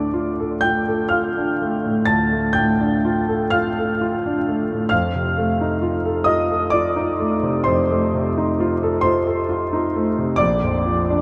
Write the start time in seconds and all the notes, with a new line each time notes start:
Already playing: D2 A2 A3 D4 D5 D6
0.14 F4
0.40 A4
0.61 F4 G5 G6
0.88 A4
1.09 F4 F5 F6
1.37 D4
1.62 A3
1.85 A2
2.05 D2 A5 A6
2.33 A3
2.53 G5 G6
2.57 A2
2.81 D4
3.05 F4
3.29 A4
3.50 F4 F5 F6
3.78 A4
4.01 F4
4.26 D4
4.49 A3
4.71 A2
4.89 F2 F5 F6
5.15 C3
5.38 A3
5.61 D#4
5.82 F4
6.06 A4
6.24 F4 D#5 D#6
6.51 A4
6.70 F4 D5 D6
6.96 D#4
7.20 A3
7.43 C3
7.64 F2 C5 C6
7.91 A3
8.14 C3
8.38 D#4
8.60 F4
8.83 A4
9.01 F4 C5 C6
9.27 A4
9.49 F4
9.73 D#4
9.96 A3
10.18 C3
10.36 A#1 D5 D6
10.63 F2
10.86 F3
11.10 D4